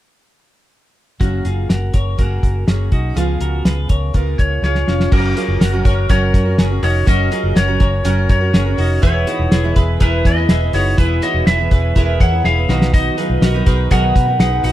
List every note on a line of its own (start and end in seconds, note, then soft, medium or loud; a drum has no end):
1.19 1.41 F#1 medium
1.19 2.18 F#3 medium
1.19 2.16 A#3 medium
1.19 1.46 C#4 medium
1.19 2.18 C#4 medium
1.19 1.45 F#4 medium
1.19 2.19 F#4 medium
1.19 kick loud
1.19 closed hi-hat medium
1.24 2.20 G#4 medium
1.45 1.65 F#1 medium
1.45 1.70 F4 medium
1.45 1.69 G#4 medium
1.45 closed hi-hat medium
1.69 1.90 F#1 medium
1.69 1.94 F#4 medium
1.69 1.94 A#4 medium
1.69 snare loud
1.69 closed hi-hat medium
1.94 2.14 F#1 medium
1.94 2.18 A#4 medium
1.94 2.19 C#5 medium
1.94 kick medium
1.94 snare soft
1.94 closed hi-hat medium
2.18 2.39 F#1 loud
2.18 2.66 A#3 medium
2.18 2.67 C#4 medium
2.18 2.65 F#4 medium
2.18 2.67 F#4 medium
2.18 2.69 G#4 medium
2.18 2.65 A#4 medium
2.18 kick medium
2.18 closed hi-hat medium
2.43 2.63 F#1 medium
2.43 kick medium
2.43 closed hi-hat medium
2.67 2.88 F#1 medium
2.67 3.16 A#3 soft
2.67 3.17 C#4 medium
2.67 2.92 C#4 soft
2.67 3.17 F#4 soft
2.67 2.92 G#4 medium
2.67 3.17 G#4 medium
2.67 snare medium
2.67 closed hi-hat medium
2.92 3.12 B1 medium
2.92 3.17 D#4 soft
2.92 3.16 F#4 medium
2.92 kick medium
2.92 closed hi-hat medium
3.15 3.36 C#2 medium
3.15 4.14 C#3 medium
3.15 4.14 F3 medium
3.15 4.12 G#3 medium
3.15 4.13 B3 medium
3.15 3.42 F4 medium
3.15 4.14 F4 medium
3.15 3.41 G#4 medium
3.15 closed hi-hat medium
3.19 4.15 G#4 medium
3.40 3.61 C#2 medium
3.40 3.66 F#4 medium
3.40 3.65 A#4 medium
3.40 closed hi-hat medium
3.65 3.85 C#2 medium
3.65 3.90 G#4 medium
3.65 3.90 B4 medium
3.65 snare loud
3.65 closed hi-hat medium
3.89 4.10 C#2 medium
3.89 4.13 A#4 medium
3.89 4.14 C#5 medium
3.89 kick medium
3.89 closed hi-hat medium
4.13 4.34 C#2 medium
4.13 4.62 G#3 medium
4.13 4.62 B3 medium
4.13 4.61 F4 medium
4.13 4.63 F4 medium
4.13 4.64 G#4 medium
4.13 4.60 A#4 medium
4.13 kick medium
4.13 closed hi-hat medium
4.39 4.59 C#2 medium
4.39 4.63 C#5 medium
4.39 kick medium
4.39 closed hi-hat medium
4.62 4.83 C#2 medium
4.62 5.12 G#3 medium
4.62 5.12 B3 soft
4.62 4.87 F4 soft
4.62 5.13 F4 medium
4.62 4.88 G#4 medium
4.62 5.13 G#4 soft
4.62 5.09 C#5 loud
4.62 snare soft
4.75 snare soft
4.87 5.07 F1 medium
4.87 5.12 C#4 soft
4.87 5.12 F4 medium
4.87 snare medium
5.00 snare medium
5.12 5.32 F#1 loud
5.12 5.34 F#3 medium
5.12 5.28 C#4 medium
5.12 5.35 C#4 medium
5.12 5.37 C#4 medium
5.12 5.28 F#4 medium
5.12 5.37 F#4 loud
5.12 5.36 F#4 medium
5.12 5.28 A#4 loud
5.12 6.06 A#4 medium
5.12 5.37 A#4 medium
5.12 kick loud
5.12 crash loud
5.36 5.73 F#3 medium
5.36 5.52 C#4 medium
5.36 5.73 C#4 medium
5.36 5.62 F4 medium
5.36 5.52 F#4 medium
5.36 5.72 F#4 medium
5.36 5.61 G#4 medium
5.36 5.53 A#4 medium
5.36 5.71 A#4 medium
5.36 closed hi-hat medium
5.48 5.58 F#1 loud
5.60 5.81 F#1 medium
5.60 5.76 C#4 medium
5.60 5.77 F#4 medium
5.60 5.86 F#4 medium
5.60 5.77 A#4 medium
5.60 5.85 A#4 medium
5.60 snare loud
5.60 closed hi-hat loud
5.72 6.07 F#3 medium
5.72 6.08 C#4 medium
5.72 6.09 F#4 medium
5.72 6.10 A#4 medium
5.85 6.05 F#1 loud
5.85 6.01 C#4 loud
5.85 6.01 F#4 medium
5.85 6.01 A#4 loud
5.85 6.09 A#4 medium
5.85 6.10 C#5 medium
5.85 kick medium
5.85 closed hi-hat medium
6.09 6.30 F#1 loud
6.09 6.46 F#3 medium
6.09 6.46 C#4 medium
6.09 6.26 C#4 medium
6.09 6.26 F#4 medium
6.09 6.46 F#4 medium
6.09 6.57 F#4 medium
6.09 6.26 A#4 loud
6.09 6.56 A#4 medium
6.09 6.44 A#4 medium
6.09 6.56 C#5 medium
6.09 kick medium
6.09 closed hi-hat medium
6.34 6.54 F#2 loud
6.34 6.50 C#4 medium
6.34 6.50 F#4 medium
6.34 6.50 A#4 medium
6.34 kick loud
6.34 closed hi-hat medium
6.45 6.72 C#4 soft
6.45 6.70 F#4 soft
6.45 6.69 A#4 medium
6.58 6.78 F#1 loud
6.58 6.74 C#4 medium
6.58 6.84 C#4 medium
6.58 6.74 F#4 medium
6.58 6.83 G#4 medium
6.58 6.75 A#4 medium
6.58 snare loud
6.58 closed hi-hat medium
6.70 7.06 C#4 soft
6.70 7.06 F#4 soft
6.70 7.07 A#4 soft
6.83 7.03 F1 loud
6.83 6.99 C#4 medium
6.83 7.08 D#4 medium
6.83 6.99 F#4 medium
6.83 7.07 F#4 medium
6.83 6.99 A#4 medium
6.83 7.09 C#5 medium
6.83 open hi-hat medium
7.06 7.27 F#1 loud
7.06 7.30 F#3 medium
7.06 7.23 C#4 medium
7.06 7.31 C#4 medium
7.06 7.32 C#4 medium
7.06 7.23 F#4 medium
7.06 7.31 F#4 medium
7.06 7.32 F#4 loud
7.06 7.23 A#4 loud
7.06 7.32 A#4 medium
7.06 7.58 D#5 loud
7.06 kick loud
7.06 closed hi-hat medium
7.31 7.68 F#3 medium
7.31 7.48 C#4 medium
7.31 7.68 C#4 medium
7.31 7.57 F4 medium
7.31 7.48 F#4 medium
7.31 7.67 F#4 medium
7.31 7.56 G#4 medium
7.31 7.48 A#4 medium
7.31 7.66 A#4 medium
7.31 closed hi-hat medium
7.44 7.54 F#1 medium
7.55 7.76 F#1 medium
7.55 7.72 C#4 medium
7.55 7.72 F#4 medium
7.55 7.81 F#4 medium
7.55 7.72 A#4 medium
7.55 7.81 A#4 medium
7.55 8.29 C#5 medium
7.55 snare loud
7.55 closed hi-hat loud
7.68 8.03 F#3 medium
7.68 8.04 C#4 medium
7.68 8.05 F#4 medium
7.68 8.05 A#4 medium
7.80 8.01 F#1 loud
7.80 7.96 C#4 medium
7.80 7.97 F#4 medium
7.80 7.97 A#4 medium
7.80 8.04 A#4 medium
7.80 8.05 C#5 medium
7.80 kick medium
7.80 snare soft
7.80 closed hi-hat medium
8.04 8.25 F#1 loud
8.04 8.41 F#3 medium
8.04 8.21 C#4 medium
8.04 8.42 C#4 medium
8.04 8.21 F#4 medium
8.04 8.41 F#4 medium
8.04 8.52 F#4 medium
8.04 8.51 A#4 medium
8.04 8.21 A#4 medium
8.04 8.39 A#4 medium
8.04 closed hi-hat medium
8.29 8.50 F#2 medium
8.29 8.45 C#4 medium
8.29 8.45 F#4 medium
8.29 8.45 A#4 medium
8.29 9.02 C#5 medium
8.29 kick loud
8.29 closed hi-hat medium
8.40 8.67 C#4 soft
8.40 8.66 F#4 medium
8.40 8.64 A#4 soft
8.53 8.74 F#1 medium
8.53 8.69 C#4 medium
8.53 8.79 C#4 medium
8.53 8.70 F#4 medium
8.53 8.78 G#4 medium
8.53 8.70 A#4 medium
8.53 snare loud
8.53 closed hi-hat medium
8.66 9.03 C#4 soft
8.66 9.03 F#4 medium
8.66 9.03 A#4 soft
8.77 8.98 F1 medium
8.77 8.94 C#4 medium
8.77 9.03 D#4 medium
8.77 8.94 F#4 medium
8.77 9.03 F#4 medium
8.77 8.94 A#4 medium
8.77 open hi-hat medium
9.02 9.23 E1 loud
9.02 9.27 E3 medium
9.02 9.25 G#3 medium
9.02 9.26 B3 medium
9.02 9.27 B3 medium
9.02 9.18 E4 medium
9.02 9.27 E4 loud
9.02 9.27 E4 medium
9.02 9.19 G#4 medium
9.02 9.19 B4 loud
9.02 9.28 B4 medium
9.02 9.72 C#5 medium
9.02 kick loud
9.02 closed hi-hat medium
9.26 9.63 G#3 medium
9.26 9.63 B3 soft
9.26 9.52 D#4 medium
9.26 9.43 E4 medium
9.26 9.63 E4 medium
9.26 9.52 F#4 medium
9.26 9.43 G#4 medium
9.26 9.43 B4 medium
9.26 9.62 B4 medium
9.26 closed hi-hat medium
9.39 9.49 E1 loud
9.51 9.72 E1 medium
9.51 9.67 E4 medium
9.51 9.76 E4 medium
9.51 9.67 G#4 medium
9.51 9.76 G#4 medium
9.51 9.68 B4 medium
9.51 snare loud
9.51 closed hi-hat loud
9.63 9.99 E3 medium
9.63 10.00 G#3 medium
9.63 10.00 B3 medium
9.63 10.01 E4 medium
9.63 10.00 B4 medium
9.76 9.96 E1 loud
9.76 9.92 E4 medium
9.76 9.92 G#4 medium
9.76 10.01 G#4 medium
9.76 9.92 B4 loud
9.76 10.00 B4 medium
9.76 kick medium
9.76 closed hi-hat medium
10.00 10.21 E1 loud
10.00 10.37 E3 medium
10.00 10.37 G#3 medium
10.00 10.38 B3 medium
10.00 10.16 E4 medium
10.00 10.47 E4 medium
10.00 10.37 E4 medium
10.00 10.16 G#4 medium
10.00 10.47 A#4 loud
10.00 10.16 B4 loud
10.00 10.26 B4 medium
10.00 10.35 B4 medium
10.00 kick medium
10.00 closed hi-hat medium
10.25 10.45 E2 medium
10.25 10.41 E4 medium
10.25 10.41 G#4 medium
10.25 10.41 B4 medium
10.25 10.76 D#5 loud
10.25 kick medium
10.25 closed hi-hat medium
10.36 10.62 B3 soft
10.36 10.61 E4 soft
10.36 10.59 B4 medium
10.49 10.69 E1 medium
10.49 10.65 E4 medium
10.49 10.74 E4 medium
10.49 10.74 G#4 medium
10.49 10.66 G#4 medium
10.49 10.66 B4 medium
10.49 snare loud
10.49 closed hi-hat medium
10.60 10.97 B3 soft
10.60 10.98 E4 soft
10.60 10.98 B4 medium
10.73 10.93 F#1 medium
10.73 10.99 D#4 medium
10.73 10.90 E4 medium
10.73 10.98 F#4 medium
10.73 10.90 G#4 medium
10.73 10.90 B4 medium
10.73 10.97 C#5 medium
10.73 open hi-hat medium
10.97 11.18 E1 loud
10.97 11.22 E3 medium
10.97 11.20 G#3 medium
10.97 11.21 B3 medium
10.97 11.22 B3 medium
10.97 11.14 E4 medium
10.97 11.22 E4 loud
10.97 11.23 E4 medium
10.97 11.14 G#4 medium
10.97 11.21 B4 medium
10.97 11.14 B4 loud
10.97 11.23 B4 medium
10.97 kick loud
10.97 closed hi-hat loud
11.21 11.59 G#3 medium
11.21 11.58 B3 medium
11.21 11.47 D#4 medium
11.21 11.38 E4 medium
11.21 11.58 E4 medium
11.21 11.47 F#4 medium
11.21 11.39 G#4 medium
11.21 11.57 B4 medium
11.21 11.39 C#5 medium
11.21 11.46 D#5 medium
11.21 closed hi-hat medium
11.34 11.44 E1 medium
11.46 11.67 E1 loud
11.46 11.63 E4 medium
11.46 11.71 E4 medium
11.46 11.63 G#4 medium
11.46 11.71 G#4 medium
11.46 11.63 B4 medium
11.46 12.21 E5 loud
11.46 snare loud
11.46 closed hi-hat medium
11.58 11.94 E3 medium
11.58 11.95 G#3 medium
11.58 11.95 B3 medium
11.58 11.96 E4 medium
11.58 11.95 B4 medium
11.71 11.91 E1 loud
11.71 11.87 E4 medium
11.71 11.87 G#4 medium
11.71 11.96 G#4 medium
11.71 11.87 B4 medium
11.71 11.96 B4 medium
11.71 kick medium
11.71 closed hi-hat medium
11.95 12.16 E1 loud
11.95 12.32 E3 medium
11.95 12.32 G#3 medium
11.95 12.33 B3 medium
11.95 12.11 E4 medium
11.95 12.32 E4 medium
11.95 12.42 E4 medium
11.95 12.12 G#4 medium
11.95 12.42 A#4 medium
11.95 12.12 B4 loud
11.95 12.30 B4 medium
11.95 kick medium
11.95 closed hi-hat medium
12.20 12.40 E2 loud
12.20 12.36 E4 medium
12.20 12.36 G#4 medium
12.20 12.36 C#5 medium
12.20 12.45 F#5 loud
12.20 kick loud
12.20 closed hi-hat medium
12.31 12.58 B3 soft
12.31 12.56 E4 medium
12.31 12.54 B4 medium
12.44 12.64 E1 loud
12.44 12.61 E4 medium
12.44 12.70 E4 soft
12.44 12.69 G#4 medium
12.44 12.61 G#4 medium
12.44 12.61 B4 medium
12.44 12.94 F5 loud
12.44 snare medium
12.56 12.69 B3 soft
12.56 12.69 E4 soft
12.56 12.68 B4 soft
12.68 13.09 B1 medium
12.68 13.18 B2 medium
12.68 13.56 D#3 medium
12.68 13.16 F#3 medium
12.68 13.18 B3 medium
12.68 13.08 D#4 medium
12.68 12.93 D#4 medium
12.68 13.19 D#4 medium
12.68 13.08 F#4 medium
12.68 12.92 F#4 medium
12.68 13.09 B4 medium
12.68 13.19 B4 medium
12.68 snare medium
12.82 snare medium
12.93 13.18 D#4 medium
12.93 13.18 F#4 loud
12.93 13.91 D#5 medium
12.93 kick loud
12.93 closed hi-hat loud
13.17 13.54 F#3 medium
13.17 13.54 B3 medium
13.17 13.33 D#4 medium
13.17 13.54 D#4 medium
13.17 13.43 F4 medium
13.17 13.34 F#4 medium
13.17 13.42 G#4 medium
13.17 13.34 B4 medium
13.17 13.53 B4 medium
13.17 closed hi-hat medium
13.29 13.40 B1 medium
13.41 13.62 B1 medium
13.41 13.58 D#4 medium
13.41 13.58 F#4 medium
13.41 13.67 F#4 medium
13.41 13.67 A#4 medium
13.41 13.58 B4 medium
13.41 snare loud
13.41 closed hi-hat loud
13.54 13.89 B2 medium
13.54 13.90 D#3 medium
13.54 13.90 F#3 medium
13.54 13.90 B3 medium
13.54 13.91 D#4 medium
13.54 13.91 B4 medium
13.66 13.87 B1 medium
13.66 13.82 D#4 medium
13.66 13.82 F#4 medium
13.66 13.91 G#4 medium
13.66 13.83 A#4 loud
13.66 13.91 B4 medium
13.66 kick loud
13.66 closed hi-hat medium
13.90 14.11 B1 loud
13.90 14.27 B2 medium
13.90 14.28 D#3 medium
13.90 14.28 F#3 medium
13.90 14.28 B3 medium
13.90 14.07 D#4 medium
13.90 14.27 D#4 medium
13.90 14.07 F#4 medium
13.90 14.37 F#4 medium
13.90 14.07 G#4 loud
13.90 14.37 A#4 medium
13.90 14.26 B4 medium
13.90 14.40 F#5 loud
13.90 kick medium
13.90 closed hi-hat medium
14.15 14.36 B2 medium
14.15 14.31 D#4 medium
14.15 14.31 F#4 medium
14.15 14.31 B4 medium
14.15 kick medium
14.15 closed hi-hat medium
14.27 14.53 F#3 soft
14.27 14.52 B3 soft
14.27 14.51 D#4 soft
14.27 14.50 B4 medium
14.39 14.59 B1 medium
14.39 14.55 D#4 medium
14.39 14.64 D#4 medium
14.39 14.56 F#4 medium
14.39 14.64 G#4 medium
14.39 14.56 B4 medium
14.39 14.63 F#5 loud
14.39 snare loud
14.39 closed hi-hat medium
14.51 14.72 F#3 soft
14.51 14.72 B3 soft
14.51 14.72 D#4 soft
14.51 14.72 B4 soft
14.63 14.72 A#1 medium
14.63 14.72 D#4 medium
14.63 14.72 F#4 medium
14.63 14.72 B4 medium
14.63 14.72 F#5 medium
14.63 open hi-hat medium